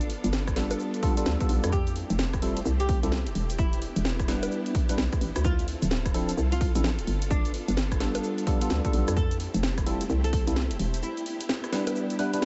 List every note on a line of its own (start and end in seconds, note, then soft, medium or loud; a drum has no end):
0.00 0.17 G1 medium
0.00 1.70 B3 medium
0.00 1.70 D4 medium
0.00 1.69 F4 medium
0.00 1.69 A4 medium
0.00 closed hi-hat soft
0.00 cabasa soft
0.10 open hi-hat loud
0.24 0.75 G1 loud
0.24 closed hi-hat medium
0.24 cabasa medium
0.33 snare loud
0.33 cabasa medium
0.47 kick medium
0.47 cross-stick medium
0.47 closed hi-hat soft
0.47 cabasa soft
0.56 1.01 G3 medium
0.56 1.01 B3 medium
0.56 1.01 D4 medium
0.56 1.01 F4 medium
0.56 1.01 A4 medium
0.56 snare medium
0.56 open hi-hat loud
0.71 closed hi-hat medium
0.71 high bongo medium
0.71 cabasa medium
0.79 cabasa soft
0.94 closed hi-hat soft
0.94 cabasa soft
1.03 1.14 G3 medium
1.03 1.14 B3 medium
1.03 1.14 D4 medium
1.03 1.14 F4 medium
1.03 1.14 A4 loud
1.03 kick loud
1.03 open hi-hat loud
1.17 1.37 G3 medium
1.17 1.37 B3 medium
1.17 1.37 D4 medium
1.17 1.37 F4 medium
1.17 1.37 A4 medium
1.17 closed hi-hat medium
1.17 cabasa medium
1.26 1.36 D2 medium
1.26 snare loud
1.26 cabasa medium
1.40 1.71 G3 medium
1.40 1.71 B3 medium
1.40 1.71 D4 medium
1.40 1.71 F4 medium
1.40 1.71 A4 loud
1.40 kick loud
1.40 closed hi-hat medium
1.40 cabasa soft
1.49 1.60 B1 medium
1.49 open hi-hat loud
1.64 2.03 F2 medium
1.64 cross-stick medium
1.64 closed hi-hat medium
1.64 cabasa medium
1.72 3.57 A3 medium
1.72 3.57 C4 medium
1.72 7.03 E4 medium
1.72 5.41 G4 medium
1.72 1.93 G4 loud
1.72 kick loud
1.72 cabasa medium
1.87 closed hi-hat soft
1.87 cabasa soft
1.96 open hi-hat loud
2.10 2.61 F1 loud
2.10 closed hi-hat medium
2.10 cabasa medium
2.19 snare loud
2.19 cabasa medium
2.33 kick medium
2.33 cross-stick medium
2.33 closed hi-hat soft
2.33 cabasa soft
2.42 2.59 G3 medium
2.42 2.59 C4 medium
2.42 2.59 E4 medium
2.42 2.59 F4 medium
2.42 2.59 A4 loud
2.42 open hi-hat loud
2.57 closed hi-hat medium
2.57 cabasa medium
2.65 2.97 C2 loud
2.65 cabasa medium
2.80 2.98 G4 loud
2.80 closed hi-hat medium
2.80 cabasa soft
2.89 kick loud
2.89 open hi-hat loud
3.03 3.28 C2 loud
3.03 3.16 G3 medium
3.03 3.16 C4 medium
3.03 3.15 E4 medium
3.03 3.15 F4 medium
3.03 3.16 A4 loud
3.03 closed hi-hat medium
3.03 cabasa medium
3.12 snare loud
3.12 cabasa medium
3.27 3.33 F1 medium
3.27 closed hi-hat soft
3.27 cabasa soft
3.35 3.90 E1 medium
3.35 open hi-hat loud
3.50 closed hi-hat medium
3.50 cabasa medium
3.58 5.43 B3 medium
3.58 5.43 D4 medium
3.58 3.79 E4 loud
3.58 kick loud
3.58 cabasa medium
3.73 closed hi-hat soft
3.73 cabasa soft
3.82 open hi-hat loud
3.96 4.47 E1 loud
3.96 closed hi-hat medium
3.96 cabasa medium
4.05 snare loud
4.05 cabasa medium
4.19 kick medium
4.19 cross-stick medium
4.19 closed hi-hat soft
4.19 cabasa soft
4.28 4.73 G3 medium
4.28 4.73 B3 medium
4.28 4.73 D4 medium
4.28 4.73 E4 medium
4.28 4.73 B4 medium
4.28 snare medium
4.28 open hi-hat loud
4.43 closed hi-hat medium
4.43 high bongo medium
4.43 cabasa medium
4.51 cabasa medium
4.66 closed hi-hat medium
4.66 cabasa soft
4.75 kick loud
4.75 open hi-hat loud
4.89 5.01 G3 medium
4.89 5.01 B3 medium
4.89 5.01 D4 medium
4.89 5.01 E4 medium
4.89 5.01 B4 loud
4.89 closed hi-hat medium
4.89 cabasa medium
4.98 5.08 B1 medium
4.98 snare loud
4.98 cabasa medium
5.13 kick loud
5.13 cross-stick medium
5.13 closed hi-hat medium
5.13 cabasa soft
5.21 5.32 A1 medium
5.21 open hi-hat loud
5.36 5.76 D2 medium
5.36 cross-stick medium
5.36 closed hi-hat medium
5.36 cabasa medium
5.44 7.06 C4 medium
5.44 5.65 F4 loud
5.44 9.13 F4 medium
5.44 9.13 A4 medium
5.44 kick loud
5.44 cabasa medium
5.59 closed hi-hat soft
5.59 cabasa soft
5.68 open hi-hat loud
5.82 6.33 D1 loud
5.82 closed hi-hat medium
5.82 cabasa medium
5.91 snare loud
5.91 cabasa medium
6.06 kick medium
6.06 cross-stick medium
6.06 closed hi-hat soft
6.06 cabasa soft
6.14 6.31 F3 medium
6.14 6.31 C4 medium
6.14 6.31 D4 medium
6.14 6.31 E4 medium
6.14 6.31 A4 loud
6.14 open hi-hat loud
6.29 closed hi-hat medium
6.29 cabasa medium
6.38 6.69 C2 loud
6.38 cabasa medium
6.52 6.70 F4 loud
6.52 closed hi-hat medium
6.52 cabasa soft
6.61 kick loud
6.61 open hi-hat loud
6.75 7.00 A1 loud
6.75 6.88 F3 loud
6.75 6.88 C4 medium
6.75 6.88 D4 medium
6.75 6.88 E4 medium
6.75 6.88 A4 loud
6.75 closed hi-hat medium
6.75 cabasa medium
6.84 snare loud
6.84 cabasa medium
6.99 7.05 D1 medium
6.99 closed hi-hat medium
6.99 cabasa soft
7.07 7.62 G1 medium
7.07 9.14 B3 medium
7.07 9.14 D4 medium
7.07 open hi-hat loud
7.22 closed hi-hat medium
7.22 cabasa medium
7.31 7.51 D4 medium
7.31 kick loud
7.31 cabasa medium
7.45 closed hi-hat soft
7.45 cabasa soft
7.54 open hi-hat loud
7.68 8.20 G1 loud
7.68 closed hi-hat medium
7.68 cabasa medium
7.77 snare loud
7.77 cabasa medium
7.92 kick medium
7.92 cross-stick medium
7.92 closed hi-hat soft
7.92 cabasa soft
8.00 8.45 G3 medium
8.00 8.45 B3 medium
8.00 8.45 D4 medium
8.00 8.45 F4 medium
8.00 8.45 A4 medium
8.00 snare medium
8.00 open hi-hat loud
8.15 closed hi-hat medium
8.15 high bongo medium
8.15 cabasa medium
8.24 cabasa medium
8.38 closed hi-hat medium
8.38 cabasa soft
8.47 8.58 G3 medium
8.47 8.58 B3 medium
8.47 8.58 D4 medium
8.47 8.58 F4 medium
8.47 8.58 A4 loud
8.47 kick loud
8.47 open hi-hat loud
8.61 8.81 G3 medium
8.61 8.81 B3 medium
8.61 8.81 D4 medium
8.61 8.81 F4 medium
8.61 8.81 A4 medium
8.61 closed hi-hat medium
8.61 cabasa medium
8.70 8.80 D2 medium
8.70 snare loud
8.70 cabasa medium
8.85 9.16 G3 medium
8.85 9.16 B3 medium
8.85 9.16 D4 medium
8.85 9.16 F4 medium
8.85 9.16 A4 loud
8.85 kick loud
8.85 closed hi-hat medium
8.85 cabasa soft
8.93 9.04 B1 medium
8.93 open hi-hat loud
9.08 9.48 F2 medium
9.08 cross-stick medium
9.08 closed hi-hat medium
9.08 cabasa medium
9.16 11.01 A3 medium
9.16 11.01 C4 medium
9.16 12.45 E4 medium
9.16 12.45 G4 medium
9.16 9.37 A4 loud
9.16 kick loud
9.16 cabasa medium
9.31 closed hi-hat soft
9.31 cabasa soft
9.40 open hi-hat loud
9.54 10.06 F1 loud
9.54 closed hi-hat medium
9.54 cabasa medium
9.63 snare loud
9.63 cabasa medium
9.78 kick medium
9.78 cross-stick medium
9.78 closed hi-hat soft
9.78 cabasa soft
9.86 10.03 G3 loud
9.86 10.03 C4 medium
9.86 10.03 E4 medium
9.86 10.03 F4 medium
9.86 10.03 A4 loud
9.86 open hi-hat loud
10.01 closed hi-hat medium
10.01 cabasa medium
10.10 10.41 C2 loud
10.10 cabasa medium
10.24 10.42 A4 loud
10.24 closed hi-hat medium
10.24 cabasa soft
10.33 kick medium
10.33 open hi-hat loud
10.47 10.72 C2 loud
10.47 10.60 G3 medium
10.47 10.60 C4 medium
10.47 10.60 E4 medium
10.47 10.60 F4 medium
10.47 10.60 A4 loud
10.47 closed hi-hat medium
10.47 cabasa medium
10.56 snare loud
10.56 cabasa medium
10.71 10.77 F1 medium
10.71 closed hi-hat medium
10.71 cabasa soft
10.79 11.03 E1 medium
10.79 open hi-hat loud
10.94 closed hi-hat medium
10.94 cabasa medium
11.03 12.45 B3 medium
11.03 12.45 D4 medium
11.03 11.23 E4 medium
11.03 cabasa medium
11.17 closed hi-hat soft
11.17 cabasa soft
11.26 open hi-hat loud
11.41 closed hi-hat medium
11.41 cabasa medium
11.49 snare loud
11.49 cabasa medium
11.64 cross-stick medium
11.64 closed hi-hat soft
11.64 cabasa soft
11.72 12.17 G3 medium
11.72 12.17 B3 medium
11.72 12.17 D4 medium
11.72 12.17 E4 medium
11.72 12.17 B4 medium
11.72 snare medium
11.72 open hi-hat loud
11.87 closed hi-hat medium
11.87 high bongo medium
11.87 cabasa medium
11.96 cabasa medium
12.10 closed hi-hat medium
12.10 cabasa soft
12.19 12.30 G3 medium
12.19 12.30 B3 medium
12.19 12.30 D4 medium
12.19 12.30 E4 medium
12.19 12.30 B4 loud
12.19 open hi-hat loud
12.33 12.45 G3 medium
12.33 12.45 B3 medium
12.33 12.45 D4 medium
12.33 12.45 E4 medium
12.33 12.45 B4 medium
12.33 closed hi-hat medium
12.33 cabasa medium